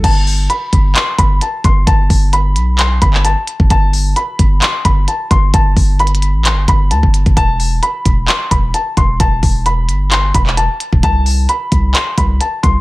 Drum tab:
CC |x-----------------------------------------------|------------------------------------------------|------------------------------------------------|------------------------------------------------|
HH |x-----o-----x-----x-----x-----x-----x-----x-----|x-----o-----x-----x-----x-----x-----x-----x-----|x-----o-----x-----x-----x-----x-----x-----x-----|x-----o-----x-x-x-x-----x-----x-----x-----x--x--|
CP |------------------------x-----------------------|------------------------x--------x--------------|------------------------x-----------------------|------------------------x-----------------------|
BD |o-----------------o-----------o-----------o-----|o-----o-----------------------o--------------o--|o-----------------o-----------o-----------o-----|o-----o-----------------------o--------o-----o--|

CC |------------------------------------------------|------------------------------------------------|------------------------------------------------|
HH |x-----o-----x-----x-----x-----x-----x-----x-----|x-----o-----x-----x-----x-----x-----x-----x-----|x-----o-----x-----x-----x-----x-----x-----x-----|
CP |------------------------x-----------------------|------------------------x--------x--------------|------------------------x-----------------------|
BD |o-----------------o-----------o-----------o-----|o-----o-----------------------o--------------o--|o-----------------o-----------o-----------o-----|